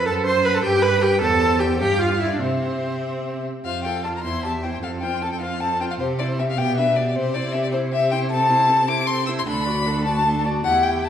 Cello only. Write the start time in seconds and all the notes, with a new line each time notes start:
0.07 F#2
0.65 G2
1.22 E2
1.81 G2
2.42 C3
3.65 F2
4.24 E2
4.83 F2
6.00 C3
6.58 B2
7.16 C3
9.46 D2
10.64 E2